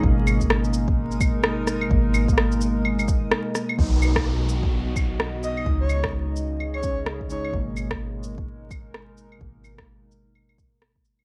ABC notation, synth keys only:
X:1
M:4/4
L:1/16
Q:"Swing 16ths" 1/4=128
K:G#m
V:1 name="Synth keys" clef=bass
[B,,G,A,]3 [B,,G,A,]12- [B,,G,A,] | [B,,G,A,]3 [B,,G,A,]6- [B,,G,A,] z6 | [B,,F,D]3 [B,,F,D]12- [B,,F,D] | [C,G,D]3 [C,G,D]6- [C,G,D] [C,G,C]4 [C,G,D] z |
[B,,G,A,]3 [B,,A,]12- [B,,A,] | [B,,G,A,]3 [B,,G,A,]6- [B,,G,A,] z6 |]